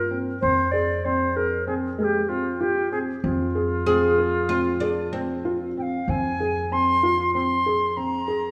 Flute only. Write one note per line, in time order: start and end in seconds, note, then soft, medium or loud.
0.00 0.18 A#4 loud
0.41 0.73 C5 loud
0.72 1.06 D5 medium
1.05 1.38 C5 medium
1.36 1.67 A#4 medium
1.67 1.74 G#4 medium
1.99 2.05 A#4 medium
2.04 2.30 G4 medium
2.29 2.62 F4 medium
2.61 2.91 G4 medium
2.92 2.99 G#4 medium
3.23 5.72 F4 medium
5.78 6.11 F5 medium
5.78 5.83 G5 medium
6.10 6.74 G#5 loud
6.73 7.33 C6 loud
7.34 7.98 C6 medium
7.97 8.51 A#5 loud